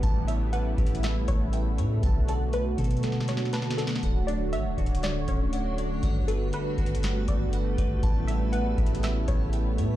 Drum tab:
HH |x-----------x-----------x-----------x---x---x---x-----------x-----------x-----------x-----------|x-----------x-----------x-----------x--x--x--x--x-----------x-----------x-----------x-----------|x-----------x-----------x-----------x---x---x---x-----------x-----------x-----------x-----------|x-----------x-----------x-----------x---x---x---x-----------x-----------x-----------x-----------|
SD |------------------------------------------------o-----------------------------------------------|------------------------------------------------o---o---o---o---o---o---o---o---o---o---o---o---|------------------------------------------------o-----------------------------------------------|------------------------------------------------o-----------------------------------------------|
BD |o-----------------------------------o-----------------------o-----------------------------------|o-----------------------------------o-----------------------------------------------------------|o-----------------------------------o-----------------------o-----------------------------------|o-----------------------------------o-----------------------o-----------------------o-----------|

HH |x-----------x-----------x-----------x---x---x---x-----------x-----------x-----------x-----------|
SD |------------------------------------------------o-----------------------------------------------|
BD |o-----------------------------------o-----------------------o-----------------------------------|